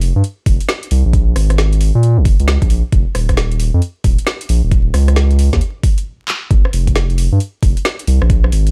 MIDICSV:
0, 0, Header, 1, 3, 480
1, 0, Start_track
1, 0, Tempo, 447761
1, 1216, Time_signature, 4, 2, 24, 8
1, 9339, End_track
2, 0, Start_track
2, 0, Title_t, "Sub bass"
2, 0, Program_c, 0, 38
2, 0, Note_on_c, 0, 29, 90
2, 130, Note_off_c, 0, 29, 0
2, 169, Note_on_c, 0, 43, 90
2, 242, Note_off_c, 0, 43, 0
2, 496, Note_on_c, 0, 29, 80
2, 625, Note_off_c, 0, 29, 0
2, 977, Note_on_c, 0, 36, 92
2, 1105, Note_off_c, 0, 36, 0
2, 1130, Note_on_c, 0, 34, 84
2, 1435, Note_off_c, 0, 34, 0
2, 1458, Note_on_c, 0, 32, 89
2, 2051, Note_off_c, 0, 32, 0
2, 2090, Note_on_c, 0, 46, 91
2, 2330, Note_on_c, 0, 29, 94
2, 2346, Note_off_c, 0, 46, 0
2, 2521, Note_off_c, 0, 29, 0
2, 2570, Note_on_c, 0, 37, 85
2, 2761, Note_off_c, 0, 37, 0
2, 2808, Note_on_c, 0, 34, 100
2, 2882, Note_off_c, 0, 34, 0
2, 2897, Note_on_c, 0, 34, 82
2, 3025, Note_off_c, 0, 34, 0
2, 3135, Note_on_c, 0, 29, 97
2, 3264, Note_off_c, 0, 29, 0
2, 3376, Note_on_c, 0, 27, 90
2, 3970, Note_off_c, 0, 27, 0
2, 4008, Note_on_c, 0, 41, 90
2, 4082, Note_off_c, 0, 41, 0
2, 4335, Note_on_c, 0, 27, 80
2, 4464, Note_off_c, 0, 27, 0
2, 4816, Note_on_c, 0, 34, 90
2, 4944, Note_off_c, 0, 34, 0
2, 4967, Note_on_c, 0, 27, 83
2, 5273, Note_off_c, 0, 27, 0
2, 5295, Note_on_c, 0, 37, 93
2, 5889, Note_off_c, 0, 37, 0
2, 5928, Note_on_c, 0, 39, 92
2, 6002, Note_off_c, 0, 39, 0
2, 6975, Note_on_c, 0, 31, 101
2, 7104, Note_off_c, 0, 31, 0
2, 7216, Note_on_c, 0, 29, 91
2, 7810, Note_off_c, 0, 29, 0
2, 7849, Note_on_c, 0, 43, 89
2, 7922, Note_off_c, 0, 43, 0
2, 8175, Note_on_c, 0, 29, 81
2, 8304, Note_off_c, 0, 29, 0
2, 8656, Note_on_c, 0, 36, 94
2, 8785, Note_off_c, 0, 36, 0
2, 8809, Note_on_c, 0, 34, 86
2, 9114, Note_off_c, 0, 34, 0
2, 9137, Note_on_c, 0, 32, 90
2, 9339, Note_off_c, 0, 32, 0
2, 9339, End_track
3, 0, Start_track
3, 0, Title_t, "Drums"
3, 15, Note_on_c, 9, 46, 95
3, 122, Note_off_c, 9, 46, 0
3, 255, Note_on_c, 9, 42, 65
3, 363, Note_off_c, 9, 42, 0
3, 496, Note_on_c, 9, 36, 104
3, 496, Note_on_c, 9, 46, 101
3, 603, Note_off_c, 9, 36, 0
3, 603, Note_off_c, 9, 46, 0
3, 649, Note_on_c, 9, 42, 66
3, 735, Note_on_c, 9, 38, 122
3, 756, Note_off_c, 9, 42, 0
3, 843, Note_off_c, 9, 38, 0
3, 889, Note_on_c, 9, 42, 52
3, 976, Note_on_c, 9, 46, 98
3, 996, Note_off_c, 9, 42, 0
3, 1083, Note_off_c, 9, 46, 0
3, 1216, Note_on_c, 9, 36, 115
3, 1216, Note_on_c, 9, 42, 68
3, 1323, Note_off_c, 9, 36, 0
3, 1323, Note_off_c, 9, 42, 0
3, 1456, Note_on_c, 9, 37, 64
3, 1456, Note_on_c, 9, 46, 106
3, 1563, Note_off_c, 9, 37, 0
3, 1563, Note_off_c, 9, 46, 0
3, 1609, Note_on_c, 9, 37, 64
3, 1609, Note_on_c, 9, 42, 69
3, 1696, Note_on_c, 9, 38, 111
3, 1716, Note_off_c, 9, 37, 0
3, 1716, Note_off_c, 9, 42, 0
3, 1804, Note_off_c, 9, 38, 0
3, 1849, Note_on_c, 9, 42, 39
3, 1936, Note_on_c, 9, 46, 98
3, 1957, Note_off_c, 9, 42, 0
3, 2043, Note_off_c, 9, 46, 0
3, 2176, Note_on_c, 9, 42, 67
3, 2284, Note_off_c, 9, 42, 0
3, 2415, Note_on_c, 9, 36, 104
3, 2416, Note_on_c, 9, 46, 101
3, 2523, Note_off_c, 9, 36, 0
3, 2523, Note_off_c, 9, 46, 0
3, 2569, Note_on_c, 9, 42, 68
3, 2656, Note_on_c, 9, 38, 115
3, 2677, Note_off_c, 9, 42, 0
3, 2763, Note_off_c, 9, 38, 0
3, 2808, Note_on_c, 9, 36, 101
3, 2809, Note_on_c, 9, 42, 52
3, 2895, Note_on_c, 9, 46, 97
3, 2916, Note_off_c, 9, 36, 0
3, 2916, Note_off_c, 9, 42, 0
3, 3002, Note_off_c, 9, 46, 0
3, 3135, Note_on_c, 9, 36, 112
3, 3135, Note_on_c, 9, 42, 70
3, 3242, Note_off_c, 9, 42, 0
3, 3243, Note_off_c, 9, 36, 0
3, 3375, Note_on_c, 9, 37, 67
3, 3375, Note_on_c, 9, 46, 113
3, 3482, Note_off_c, 9, 37, 0
3, 3482, Note_off_c, 9, 46, 0
3, 3528, Note_on_c, 9, 36, 59
3, 3528, Note_on_c, 9, 37, 67
3, 3528, Note_on_c, 9, 42, 70
3, 3615, Note_on_c, 9, 38, 110
3, 3635, Note_off_c, 9, 36, 0
3, 3635, Note_off_c, 9, 37, 0
3, 3635, Note_off_c, 9, 42, 0
3, 3722, Note_off_c, 9, 38, 0
3, 3768, Note_on_c, 9, 42, 39
3, 3855, Note_on_c, 9, 46, 105
3, 3875, Note_off_c, 9, 42, 0
3, 3962, Note_off_c, 9, 46, 0
3, 4095, Note_on_c, 9, 42, 66
3, 4202, Note_off_c, 9, 42, 0
3, 4334, Note_on_c, 9, 46, 108
3, 4335, Note_on_c, 9, 36, 101
3, 4442, Note_off_c, 9, 36, 0
3, 4442, Note_off_c, 9, 46, 0
3, 4487, Note_on_c, 9, 42, 71
3, 4574, Note_on_c, 9, 38, 114
3, 4594, Note_off_c, 9, 42, 0
3, 4681, Note_off_c, 9, 38, 0
3, 4728, Note_on_c, 9, 42, 54
3, 4815, Note_on_c, 9, 46, 106
3, 4835, Note_off_c, 9, 42, 0
3, 4922, Note_off_c, 9, 46, 0
3, 5055, Note_on_c, 9, 36, 117
3, 5055, Note_on_c, 9, 42, 67
3, 5162, Note_off_c, 9, 36, 0
3, 5162, Note_off_c, 9, 42, 0
3, 5295, Note_on_c, 9, 37, 71
3, 5295, Note_on_c, 9, 46, 112
3, 5402, Note_off_c, 9, 37, 0
3, 5402, Note_off_c, 9, 46, 0
3, 5447, Note_on_c, 9, 37, 70
3, 5447, Note_on_c, 9, 42, 70
3, 5534, Note_on_c, 9, 38, 111
3, 5554, Note_off_c, 9, 37, 0
3, 5554, Note_off_c, 9, 42, 0
3, 5641, Note_off_c, 9, 38, 0
3, 5687, Note_on_c, 9, 42, 37
3, 5775, Note_on_c, 9, 46, 107
3, 5795, Note_off_c, 9, 42, 0
3, 5882, Note_off_c, 9, 46, 0
3, 5928, Note_on_c, 9, 36, 59
3, 5928, Note_on_c, 9, 38, 57
3, 6016, Note_on_c, 9, 42, 67
3, 6035, Note_off_c, 9, 36, 0
3, 6035, Note_off_c, 9, 38, 0
3, 6123, Note_off_c, 9, 42, 0
3, 6255, Note_on_c, 9, 36, 106
3, 6255, Note_on_c, 9, 46, 109
3, 6362, Note_off_c, 9, 36, 0
3, 6363, Note_off_c, 9, 46, 0
3, 6409, Note_on_c, 9, 42, 68
3, 6516, Note_off_c, 9, 42, 0
3, 6736, Note_on_c, 9, 39, 89
3, 6843, Note_off_c, 9, 39, 0
3, 6975, Note_on_c, 9, 36, 119
3, 6976, Note_on_c, 9, 42, 67
3, 7082, Note_off_c, 9, 36, 0
3, 7084, Note_off_c, 9, 42, 0
3, 7129, Note_on_c, 9, 37, 68
3, 7216, Note_on_c, 9, 46, 113
3, 7237, Note_off_c, 9, 37, 0
3, 7323, Note_off_c, 9, 46, 0
3, 7368, Note_on_c, 9, 36, 62
3, 7369, Note_on_c, 9, 42, 66
3, 7456, Note_on_c, 9, 38, 115
3, 7475, Note_off_c, 9, 36, 0
3, 7476, Note_off_c, 9, 42, 0
3, 7563, Note_off_c, 9, 38, 0
3, 7609, Note_on_c, 9, 42, 36
3, 7696, Note_on_c, 9, 46, 107
3, 7716, Note_off_c, 9, 42, 0
3, 7804, Note_off_c, 9, 46, 0
3, 7936, Note_on_c, 9, 42, 67
3, 8043, Note_off_c, 9, 42, 0
3, 8175, Note_on_c, 9, 36, 106
3, 8176, Note_on_c, 9, 46, 107
3, 8283, Note_off_c, 9, 36, 0
3, 8283, Note_off_c, 9, 46, 0
3, 8329, Note_on_c, 9, 42, 63
3, 8416, Note_on_c, 9, 38, 120
3, 8437, Note_off_c, 9, 42, 0
3, 8523, Note_off_c, 9, 38, 0
3, 8569, Note_on_c, 9, 42, 53
3, 8656, Note_on_c, 9, 46, 107
3, 8677, Note_off_c, 9, 42, 0
3, 8763, Note_off_c, 9, 46, 0
3, 8809, Note_on_c, 9, 37, 67
3, 8896, Note_on_c, 9, 36, 127
3, 8897, Note_on_c, 9, 42, 63
3, 8916, Note_off_c, 9, 37, 0
3, 9003, Note_off_c, 9, 36, 0
3, 9004, Note_off_c, 9, 42, 0
3, 9049, Note_on_c, 9, 37, 68
3, 9137, Note_on_c, 9, 46, 108
3, 9156, Note_off_c, 9, 37, 0
3, 9244, Note_off_c, 9, 46, 0
3, 9290, Note_on_c, 9, 42, 63
3, 9339, Note_off_c, 9, 42, 0
3, 9339, End_track
0, 0, End_of_file